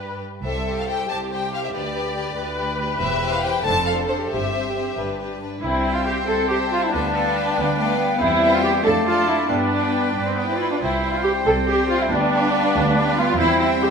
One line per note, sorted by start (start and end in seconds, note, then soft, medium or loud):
0.00 0.21 G2 soft
0.00 0.22 G4 soft
0.00 0.10 B4 soft
0.00 0.24 B4 soft
0.44 0.85 C2 soft
0.44 1.02 C2 soft
0.44 0.65 G4 soft
0.44 1.05 A4 soft
0.44 0.65 C5 soft
0.44 0.75 E5 soft
0.66 0.85 G4 soft
0.66 0.86 C5 soft
0.78 0.88 F5 soft
0.87 1.08 G4 soft
0.87 1.08 C5 soft
0.87 1.09 G5 medium
1.08 1.66 C2 soft
1.08 2.36 G4 soft
1.08 1.30 G4 soft
1.08 1.30 C5 soft
1.08 1.18 A5 medium
1.31 1.51 G4 soft
1.31 1.51 C5 soft
1.31 1.53 G5 soft
1.52 1.72 G4 soft
1.52 1.73 C5 soft
1.52 1.63 F5 soft
1.65 1.69 E5 soft
1.73 2.12 D2 soft
1.73 2.29 D2 soft
1.73 1.93 G4 soft
1.73 1.93 B4 soft
1.73 2.77 D5 soft
1.94 2.14 G4 soft
1.94 2.14 B4 soft
2.15 2.35 G4 soft
2.15 2.36 B4 soft
2.36 2.92 D2 medium
2.36 2.56 G4 soft
2.36 2.56 B4 soft
2.36 3.62 B4 medium
2.57 2.78 G4 soft
2.57 2.78 B4 soft
2.80 2.99 G4 soft
2.80 3.00 B4 soft
2.99 3.40 E1 medium
2.99 3.57 E2 medium
2.99 3.20 G4 soft
2.99 3.20 C5 soft
2.99 3.30 E5 medium
3.21 3.42 G4 soft
3.21 3.42 C5 soft
3.33 3.43 F5 medium
3.42 3.64 G4 soft
3.42 3.63 C5 soft
3.42 3.64 G5 medium
3.64 4.05 F1 medium
3.64 4.22 F2 medium
3.64 3.86 D4 soft
3.64 4.29 A4 medium
3.64 3.85 C5 soft
3.64 3.86 A5 medium
3.86 4.07 D4 soft
3.86 4.07 C5 soft
3.86 3.95 F5 medium
4.08 4.30 D4 soft
4.08 4.30 C5 soft
4.08 4.17 C5 medium
4.30 4.72 G1 soft
4.30 4.89 G2 soft
4.30 4.52 C4 soft
4.30 5.30 G4 soft
4.30 4.52 C5 soft
4.30 4.96 E5 medium
4.54 4.75 C4 soft
4.54 4.75 C5 soft
4.76 4.97 C4 soft
4.76 4.98 C5 soft
4.96 5.38 G1 soft
4.96 5.55 G2 soft
4.96 5.19 D4 soft
4.96 5.18 B4 soft
5.19 5.40 D4 soft
5.19 5.41 B4 soft
5.41 5.63 D4 soft
5.41 5.63 B4 soft
5.62 6.17 C2 medium
5.62 8.16 G3 soft
5.62 6.88 C4 soft
5.62 6.89 C4 soft
5.62 5.93 E4 medium
5.62 6.95 C5 soft
5.62 6.24 G5 soft
5.85 6.48 C5 soft
5.85 6.48 E5 soft
5.85 6.48 G5 soft
5.96 6.07 F4 soft
6.06 6.14 G4 medium
6.27 6.82 C2 soft
6.27 6.49 A4 medium
6.27 7.56 A5 soft
6.49 6.57 G4 medium
6.49 6.92 C5 soft
6.49 6.92 E5 soft
6.49 6.91 G5 soft
6.71 6.82 F4 medium
6.82 6.93 E4 soft
6.91 7.46 D2 medium
6.91 8.17 B3 soft
6.91 7.55 B3 soft
6.91 7.96 D4 medium
6.91 7.12 B4 soft
6.91 7.17 B4 soft
6.91 7.11 F5 soft
6.91 7.13 G5 soft
7.12 7.38 A4 soft
7.12 7.76 B4 soft
7.12 7.76 F5 soft
7.12 7.76 G5 soft
7.37 7.57 B4 soft
7.56 8.09 D2 medium
7.56 7.64 B3 medium
7.56 8.19 B4 medium
7.56 8.20 G5 soft
7.77 7.98 A3 soft
7.77 8.19 B4 soft
7.77 8.19 F5 soft
7.77 8.20 G5 soft
7.99 8.84 B3 medium
8.19 8.74 E2 medium
8.19 8.83 G3 medium
8.19 8.82 C4 medium
8.19 8.50 E4 medium
8.19 8.85 C5 soft
8.19 8.81 G5 medium
8.42 8.84 C5 soft
8.42 8.84 E5 soft
8.42 8.84 G5 soft
8.53 8.63 F4 medium
8.63 8.71 G4 medium
8.84 9.39 F2 medium
8.84 9.49 A3 medium
8.84 9.50 A3 soft
8.84 9.50 D4 soft
8.84 8.92 A4 medium
8.84 9.05 A4 soft
8.84 9.49 D5 medium
8.84 9.05 D5 soft
8.84 9.50 F5 medium
8.84 9.05 A5 soft
9.06 9.27 F4 medium
9.06 9.49 A4 soft
9.06 9.49 D5 soft
9.06 9.50 A5 soft
9.27 9.49 E4 medium
9.48 10.05 G2 soft
9.48 10.58 G3 soft
9.48 10.56 B3 soft
9.48 10.09 B3 soft
9.48 10.14 D4 medium
9.48 10.57 B4 soft
9.48 10.56 G5 soft
9.71 10.36 B4 soft
9.71 10.36 D5 soft
9.71 10.36 G5 soft
10.14 10.70 G2 soft
10.14 10.45 D4 soft
10.26 10.36 C4 soft
10.36 10.47 B3 soft
10.36 10.80 B4 soft
10.36 10.80 D5 soft
10.36 10.80 G5 soft
10.47 10.53 C4 soft
10.47 10.58 E4 soft
10.57 10.69 E4 soft
10.57 10.80 F4 soft
10.71 10.75 D4 soft
10.80 11.36 C2 medium
10.80 13.34 G3 soft
10.80 12.07 C4 soft
10.80 11.13 E4 medium
10.80 11.00 C5 soft
10.80 12.14 C5 soft
10.80 13.35 G5 soft
10.80 11.03 G5 soft
11.01 11.65 C5 soft
11.01 11.67 G5 soft
11.13 11.24 F4 medium
11.23 11.31 G4 medium
11.45 12.01 C2 medium
11.45 12.06 C4 medium
11.45 11.54 A4 medium
11.66 11.89 G4 medium
11.66 12.10 C5 soft
11.66 12.11 G5 soft
11.89 12.00 F4 medium
12.01 12.11 E4 medium
12.10 12.64 D2 medium
12.10 12.73 B3 medium
12.10 13.35 B3 medium
12.10 13.15 D4 medium
12.10 13.37 B4 medium
12.32 12.95 B4 soft
12.32 12.95 F5 soft
12.32 12.95 G5 soft
12.74 13.28 D2 medium
12.74 12.95 A3 medium
12.95 13.17 G3 medium
12.95 13.38 B4 soft
12.95 13.38 F5 soft
12.95 13.38 G5 soft
13.16 13.38 B3 medium
13.16 13.38 F4 medium
13.37 13.90 E2 medium
13.37 13.90 G3 medium
13.37 13.90 C4 medium
13.37 13.59 E4 medium
13.37 13.90 C5 soft
13.37 13.58 C5 soft
13.37 13.58 E5 soft
13.37 13.60 G5 soft
13.41 13.90 G5 medium
13.59 13.68 E4 medium
13.59 13.90 C5 soft
13.59 13.90 E5 soft
13.59 13.90 G5 soft
13.82 13.90 G4 medium